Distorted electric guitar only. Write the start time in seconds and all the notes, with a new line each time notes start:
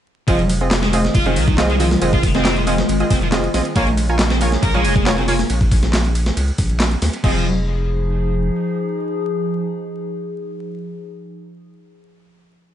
0.28 F3
0.82 G#3
1.15 F4
1.26 D#3
1.48 D#3
1.70 G#3
1.80 F3
2.13 F4
2.35 C4
2.57 G#3
2.68 F3
3.11 C4
3.22 F3
3.76 A#3
4.31 C4
4.63 A#4
4.74 G#3
4.96 G#3
5.18 C4
5.28 A#3
7.24 F3